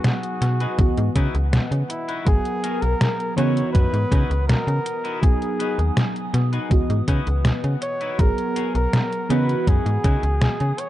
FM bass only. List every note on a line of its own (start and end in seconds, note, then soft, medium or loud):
0.42 0.67 B2 loud
0.78 0.91 C#2 medium
0.98 1.10 G#2 medium
1.15 1.28 C#3 loud
1.35 1.59 C#2 medium
1.71 1.84 C#3 medium
2.27 2.39 G#1 loud
2.82 2.95 B1 medium
3.38 3.63 C#3 loud
3.75 3.88 F#2 medium
3.93 4.06 G#2 medium
4.12 4.25 C#3 loud
4.30 4.55 C#2 medium
4.67 4.80 C#3 medium
5.23 5.36 B1 loud
5.78 5.91 D#2 medium
6.34 6.59 B2 loud
6.71 6.84 C#2 medium
6.90 7.02 G#2 medium
7.08 7.21 C#3 loud
7.27 7.52 C#2 medium
7.64 7.76 C#3 medium
8.19 8.32 G#1 loud
8.75 8.87 B1 medium
9.30 9.55 C#3 loud
9.67 9.80 F#2 medium
9.86 9.98 G#2 medium
10.04 10.17 C#3 loud
10.23 10.48 C#2 medium
10.61 10.73 C#3 medium